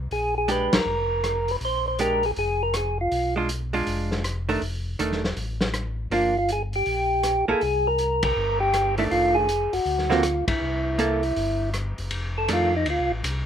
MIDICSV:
0, 0, Header, 1, 5, 480
1, 0, Start_track
1, 0, Tempo, 375000
1, 151, Time_signature, 4, 2, 24, 8
1, 17226, End_track
2, 0, Start_track
2, 0, Title_t, "Tonewheel organ"
2, 0, Program_c, 0, 16
2, 159, Note_on_c, 0, 68, 76
2, 444, Note_off_c, 0, 68, 0
2, 484, Note_on_c, 0, 68, 76
2, 631, Note_off_c, 0, 68, 0
2, 653, Note_on_c, 0, 71, 82
2, 959, Note_on_c, 0, 70, 81
2, 961, Note_off_c, 0, 71, 0
2, 1933, Note_on_c, 0, 71, 81
2, 1939, Note_off_c, 0, 70, 0
2, 2002, Note_off_c, 0, 71, 0
2, 2109, Note_on_c, 0, 72, 99
2, 2380, Note_off_c, 0, 72, 0
2, 2401, Note_on_c, 0, 72, 90
2, 2549, Note_off_c, 0, 72, 0
2, 2575, Note_on_c, 0, 70, 84
2, 2883, Note_off_c, 0, 70, 0
2, 2888, Note_on_c, 0, 68, 83
2, 2958, Note_off_c, 0, 68, 0
2, 3054, Note_on_c, 0, 68, 81
2, 3362, Note_off_c, 0, 68, 0
2, 3364, Note_on_c, 0, 70, 78
2, 3527, Note_off_c, 0, 70, 0
2, 3540, Note_on_c, 0, 68, 78
2, 3816, Note_off_c, 0, 68, 0
2, 3852, Note_on_c, 0, 65, 67
2, 4284, Note_off_c, 0, 65, 0
2, 7852, Note_on_c, 0, 65, 83
2, 8156, Note_off_c, 0, 65, 0
2, 8171, Note_on_c, 0, 65, 75
2, 8329, Note_off_c, 0, 65, 0
2, 8349, Note_on_c, 0, 68, 87
2, 8480, Note_off_c, 0, 68, 0
2, 8647, Note_on_c, 0, 67, 81
2, 9541, Note_off_c, 0, 67, 0
2, 9611, Note_on_c, 0, 68, 101
2, 10077, Note_on_c, 0, 70, 90
2, 10088, Note_off_c, 0, 68, 0
2, 10543, Note_off_c, 0, 70, 0
2, 10558, Note_on_c, 0, 70, 90
2, 10995, Note_off_c, 0, 70, 0
2, 11010, Note_on_c, 0, 67, 96
2, 11460, Note_off_c, 0, 67, 0
2, 11501, Note_on_c, 0, 64, 77
2, 11576, Note_off_c, 0, 64, 0
2, 11664, Note_on_c, 0, 65, 86
2, 11964, Note_on_c, 0, 68, 90
2, 11985, Note_off_c, 0, 65, 0
2, 12456, Note_on_c, 0, 66, 84
2, 12465, Note_off_c, 0, 68, 0
2, 12933, Note_on_c, 0, 65, 80
2, 12951, Note_off_c, 0, 66, 0
2, 13381, Note_off_c, 0, 65, 0
2, 13413, Note_on_c, 0, 64, 63
2, 14974, Note_off_c, 0, 64, 0
2, 15843, Note_on_c, 0, 69, 84
2, 15996, Note_off_c, 0, 69, 0
2, 16038, Note_on_c, 0, 65, 71
2, 16316, Note_off_c, 0, 65, 0
2, 16337, Note_on_c, 0, 63, 75
2, 16484, Note_off_c, 0, 63, 0
2, 16511, Note_on_c, 0, 65, 69
2, 16793, Note_off_c, 0, 65, 0
2, 17226, End_track
3, 0, Start_track
3, 0, Title_t, "Hollow-body jazz guitar"
3, 0, Program_c, 1, 26
3, 616, Note_on_c, 1, 56, 52
3, 623, Note_on_c, 1, 62, 62
3, 630, Note_on_c, 1, 67, 64
3, 903, Note_off_c, 1, 56, 0
3, 906, Note_off_c, 1, 62, 0
3, 910, Note_off_c, 1, 67, 0
3, 2552, Note_on_c, 1, 56, 53
3, 2561, Note_on_c, 1, 62, 53
3, 2570, Note_on_c, 1, 67, 62
3, 2831, Note_off_c, 1, 56, 0
3, 2836, Note_off_c, 1, 62, 0
3, 2840, Note_off_c, 1, 67, 0
3, 4300, Note_on_c, 1, 56, 51
3, 4316, Note_on_c, 1, 62, 54
3, 4319, Note_on_c, 1, 65, 55
3, 4453, Note_off_c, 1, 56, 0
3, 4461, Note_off_c, 1, 62, 0
3, 4463, Note_off_c, 1, 65, 0
3, 4778, Note_on_c, 1, 56, 56
3, 4788, Note_on_c, 1, 62, 59
3, 4792, Note_on_c, 1, 65, 55
3, 5395, Note_off_c, 1, 56, 0
3, 5400, Note_off_c, 1, 62, 0
3, 5402, Note_off_c, 1, 65, 0
3, 5742, Note_on_c, 1, 51, 75
3, 5750, Note_on_c, 1, 57, 75
3, 5754, Note_on_c, 1, 62, 76
3, 5894, Note_off_c, 1, 51, 0
3, 5898, Note_off_c, 1, 57, 0
3, 5900, Note_off_c, 1, 62, 0
3, 6390, Note_on_c, 1, 51, 64
3, 6402, Note_on_c, 1, 57, 62
3, 6406, Note_on_c, 1, 62, 59
3, 6670, Note_off_c, 1, 51, 0
3, 6676, Note_off_c, 1, 57, 0
3, 6678, Note_off_c, 1, 62, 0
3, 7827, Note_on_c, 1, 53, 40
3, 7832, Note_on_c, 1, 58, 48
3, 7838, Note_on_c, 1, 62, 55
3, 8108, Note_off_c, 1, 53, 0
3, 8110, Note_off_c, 1, 58, 0
3, 8113, Note_off_c, 1, 62, 0
3, 9577, Note_on_c, 1, 58, 65
3, 9583, Note_on_c, 1, 64, 63
3, 9591, Note_on_c, 1, 69, 66
3, 9730, Note_off_c, 1, 58, 0
3, 9733, Note_off_c, 1, 64, 0
3, 9737, Note_off_c, 1, 69, 0
3, 11495, Note_on_c, 1, 51, 54
3, 11502, Note_on_c, 1, 57, 59
3, 11509, Note_on_c, 1, 62, 63
3, 12111, Note_off_c, 1, 51, 0
3, 12115, Note_off_c, 1, 57, 0
3, 12118, Note_off_c, 1, 62, 0
3, 12922, Note_on_c, 1, 50, 63
3, 12929, Note_on_c, 1, 58, 69
3, 12933, Note_on_c, 1, 60, 68
3, 12940, Note_on_c, 1, 66, 71
3, 13082, Note_off_c, 1, 50, 0
3, 13085, Note_off_c, 1, 58, 0
3, 13087, Note_off_c, 1, 60, 0
3, 13090, Note_off_c, 1, 66, 0
3, 14061, Note_on_c, 1, 58, 58
3, 14073, Note_on_c, 1, 64, 63
3, 14077, Note_on_c, 1, 69, 63
3, 14344, Note_off_c, 1, 58, 0
3, 14350, Note_off_c, 1, 64, 0
3, 14352, Note_off_c, 1, 69, 0
3, 15982, Note_on_c, 1, 51, 52
3, 15990, Note_on_c, 1, 57, 57
3, 16000, Note_on_c, 1, 62, 61
3, 16266, Note_off_c, 1, 51, 0
3, 16270, Note_off_c, 1, 57, 0
3, 16275, Note_off_c, 1, 62, 0
3, 17226, End_track
4, 0, Start_track
4, 0, Title_t, "Tonewheel organ"
4, 0, Program_c, 2, 16
4, 142, Note_on_c, 2, 34, 71
4, 886, Note_off_c, 2, 34, 0
4, 935, Note_on_c, 2, 34, 35
4, 1021, Note_off_c, 2, 34, 0
4, 1096, Note_on_c, 2, 29, 76
4, 2015, Note_off_c, 2, 29, 0
4, 2058, Note_on_c, 2, 34, 69
4, 2976, Note_off_c, 2, 34, 0
4, 3028, Note_on_c, 2, 29, 80
4, 3942, Note_off_c, 2, 29, 0
4, 3989, Note_on_c, 2, 35, 75
4, 4902, Note_off_c, 2, 35, 0
4, 4954, Note_on_c, 2, 29, 83
4, 5864, Note_off_c, 2, 29, 0
4, 5909, Note_on_c, 2, 29, 74
4, 6356, Note_off_c, 2, 29, 0
4, 6388, Note_on_c, 2, 28, 70
4, 6835, Note_off_c, 2, 28, 0
4, 6863, Note_on_c, 2, 33, 81
4, 7777, Note_off_c, 2, 33, 0
4, 7812, Note_on_c, 2, 31, 66
4, 8732, Note_off_c, 2, 31, 0
4, 8788, Note_on_c, 2, 34, 75
4, 9527, Note_off_c, 2, 34, 0
4, 9580, Note_on_c, 2, 34, 34
4, 9664, Note_off_c, 2, 34, 0
4, 9750, Note_on_c, 2, 36, 75
4, 10660, Note_off_c, 2, 36, 0
4, 10702, Note_on_c, 2, 31, 81
4, 11615, Note_off_c, 2, 31, 0
4, 11664, Note_on_c, 2, 29, 71
4, 12404, Note_off_c, 2, 29, 0
4, 12457, Note_on_c, 2, 29, 33
4, 12542, Note_off_c, 2, 29, 0
4, 12613, Note_on_c, 2, 38, 80
4, 13359, Note_off_c, 2, 38, 0
4, 13412, Note_on_c, 2, 38, 39
4, 13498, Note_off_c, 2, 38, 0
4, 13588, Note_on_c, 2, 36, 73
4, 14500, Note_off_c, 2, 36, 0
4, 14546, Note_on_c, 2, 31, 86
4, 15287, Note_off_c, 2, 31, 0
4, 15341, Note_on_c, 2, 30, 68
4, 15497, Note_off_c, 2, 30, 0
4, 15498, Note_on_c, 2, 29, 77
4, 15969, Note_off_c, 2, 29, 0
4, 15986, Note_on_c, 2, 41, 77
4, 16454, Note_off_c, 2, 41, 0
4, 16466, Note_on_c, 2, 38, 81
4, 16623, Note_off_c, 2, 38, 0
4, 16628, Note_on_c, 2, 36, 54
4, 16776, Note_on_c, 2, 33, 67
4, 16790, Note_off_c, 2, 36, 0
4, 16932, Note_off_c, 2, 33, 0
4, 16942, Note_on_c, 2, 36, 94
4, 17226, Note_off_c, 2, 36, 0
4, 17226, End_track
5, 0, Start_track
5, 0, Title_t, "Drums"
5, 141, Note_on_c, 9, 46, 36
5, 269, Note_off_c, 9, 46, 0
5, 617, Note_on_c, 9, 42, 46
5, 745, Note_off_c, 9, 42, 0
5, 930, Note_on_c, 9, 51, 62
5, 931, Note_on_c, 9, 38, 69
5, 1058, Note_off_c, 9, 51, 0
5, 1059, Note_off_c, 9, 38, 0
5, 1583, Note_on_c, 9, 42, 48
5, 1584, Note_on_c, 9, 37, 61
5, 1711, Note_off_c, 9, 42, 0
5, 1712, Note_off_c, 9, 37, 0
5, 1896, Note_on_c, 9, 46, 37
5, 2024, Note_off_c, 9, 46, 0
5, 2060, Note_on_c, 9, 46, 41
5, 2188, Note_off_c, 9, 46, 0
5, 2543, Note_on_c, 9, 42, 49
5, 2671, Note_off_c, 9, 42, 0
5, 2855, Note_on_c, 9, 46, 34
5, 2983, Note_off_c, 9, 46, 0
5, 3024, Note_on_c, 9, 46, 38
5, 3152, Note_off_c, 9, 46, 0
5, 3503, Note_on_c, 9, 42, 53
5, 3504, Note_on_c, 9, 37, 58
5, 3631, Note_off_c, 9, 42, 0
5, 3632, Note_off_c, 9, 37, 0
5, 3988, Note_on_c, 9, 46, 40
5, 4116, Note_off_c, 9, 46, 0
5, 4466, Note_on_c, 9, 42, 50
5, 4594, Note_off_c, 9, 42, 0
5, 4778, Note_on_c, 9, 46, 35
5, 4906, Note_off_c, 9, 46, 0
5, 4948, Note_on_c, 9, 46, 44
5, 5076, Note_off_c, 9, 46, 0
5, 5266, Note_on_c, 9, 38, 37
5, 5394, Note_off_c, 9, 38, 0
5, 5430, Note_on_c, 9, 42, 48
5, 5432, Note_on_c, 9, 37, 52
5, 5558, Note_off_c, 9, 42, 0
5, 5560, Note_off_c, 9, 37, 0
5, 5743, Note_on_c, 9, 46, 36
5, 5871, Note_off_c, 9, 46, 0
5, 5910, Note_on_c, 9, 46, 41
5, 6038, Note_off_c, 9, 46, 0
5, 6390, Note_on_c, 9, 42, 48
5, 6518, Note_off_c, 9, 42, 0
5, 6553, Note_on_c, 9, 38, 27
5, 6681, Note_off_c, 9, 38, 0
5, 6712, Note_on_c, 9, 38, 41
5, 6840, Note_off_c, 9, 38, 0
5, 6869, Note_on_c, 9, 46, 41
5, 6997, Note_off_c, 9, 46, 0
5, 7175, Note_on_c, 9, 38, 52
5, 7303, Note_off_c, 9, 38, 0
5, 7342, Note_on_c, 9, 42, 48
5, 7343, Note_on_c, 9, 37, 62
5, 7470, Note_off_c, 9, 42, 0
5, 7471, Note_off_c, 9, 37, 0
5, 7826, Note_on_c, 9, 46, 42
5, 7954, Note_off_c, 9, 46, 0
5, 8301, Note_on_c, 9, 42, 46
5, 8429, Note_off_c, 9, 42, 0
5, 8614, Note_on_c, 9, 46, 34
5, 8742, Note_off_c, 9, 46, 0
5, 8777, Note_on_c, 9, 46, 41
5, 8905, Note_off_c, 9, 46, 0
5, 9259, Note_on_c, 9, 42, 52
5, 9261, Note_on_c, 9, 37, 55
5, 9387, Note_off_c, 9, 42, 0
5, 9389, Note_off_c, 9, 37, 0
5, 9742, Note_on_c, 9, 46, 39
5, 9870, Note_off_c, 9, 46, 0
5, 10219, Note_on_c, 9, 42, 45
5, 10347, Note_off_c, 9, 42, 0
5, 10529, Note_on_c, 9, 51, 70
5, 10534, Note_on_c, 9, 36, 72
5, 10657, Note_off_c, 9, 51, 0
5, 10662, Note_off_c, 9, 36, 0
5, 11181, Note_on_c, 9, 42, 51
5, 11182, Note_on_c, 9, 37, 58
5, 11309, Note_off_c, 9, 42, 0
5, 11310, Note_off_c, 9, 37, 0
5, 11490, Note_on_c, 9, 46, 37
5, 11618, Note_off_c, 9, 46, 0
5, 11664, Note_on_c, 9, 46, 46
5, 11792, Note_off_c, 9, 46, 0
5, 12142, Note_on_c, 9, 42, 50
5, 12270, Note_off_c, 9, 42, 0
5, 12454, Note_on_c, 9, 46, 39
5, 12582, Note_off_c, 9, 46, 0
5, 12621, Note_on_c, 9, 46, 39
5, 12749, Note_off_c, 9, 46, 0
5, 12780, Note_on_c, 9, 38, 28
5, 12908, Note_off_c, 9, 38, 0
5, 12939, Note_on_c, 9, 38, 39
5, 13067, Note_off_c, 9, 38, 0
5, 13095, Note_on_c, 9, 42, 50
5, 13096, Note_on_c, 9, 37, 63
5, 13223, Note_off_c, 9, 42, 0
5, 13224, Note_off_c, 9, 37, 0
5, 13411, Note_on_c, 9, 36, 79
5, 13411, Note_on_c, 9, 51, 68
5, 13539, Note_off_c, 9, 36, 0
5, 13539, Note_off_c, 9, 51, 0
5, 14062, Note_on_c, 9, 42, 45
5, 14190, Note_off_c, 9, 42, 0
5, 14373, Note_on_c, 9, 46, 36
5, 14501, Note_off_c, 9, 46, 0
5, 14545, Note_on_c, 9, 46, 43
5, 14673, Note_off_c, 9, 46, 0
5, 15022, Note_on_c, 9, 42, 52
5, 15023, Note_on_c, 9, 37, 51
5, 15150, Note_off_c, 9, 42, 0
5, 15151, Note_off_c, 9, 37, 0
5, 15335, Note_on_c, 9, 46, 38
5, 15463, Note_off_c, 9, 46, 0
5, 15496, Note_on_c, 9, 51, 56
5, 15624, Note_off_c, 9, 51, 0
5, 15979, Note_on_c, 9, 44, 56
5, 15979, Note_on_c, 9, 51, 61
5, 16107, Note_off_c, 9, 44, 0
5, 16107, Note_off_c, 9, 51, 0
5, 16458, Note_on_c, 9, 51, 49
5, 16586, Note_off_c, 9, 51, 0
5, 16948, Note_on_c, 9, 44, 60
5, 16948, Note_on_c, 9, 51, 60
5, 17076, Note_off_c, 9, 44, 0
5, 17076, Note_off_c, 9, 51, 0
5, 17226, End_track
0, 0, End_of_file